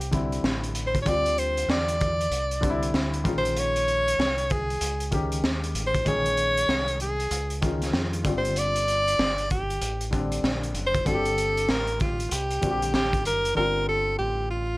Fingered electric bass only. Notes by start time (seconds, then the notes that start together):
Already playing: C2
0.43 A1
1.06 D2
1.68 E2
2.31 C2
2.94 D2
3.25 A#1
4.19 C2
4.81 C#2
5.44 D#2
5.75 A1
6.06 A#1
6.69 C2
7.31 C#2
7.93 F2
8.25 G1
9.19 G1
9.81 A1
10.43 A#1
10.75 F#1
11.06 G1
11.69 A1
12.32 C2
12.63 A#1
12.94 A1
13.25 F#1
13.57 G1
14.19 A1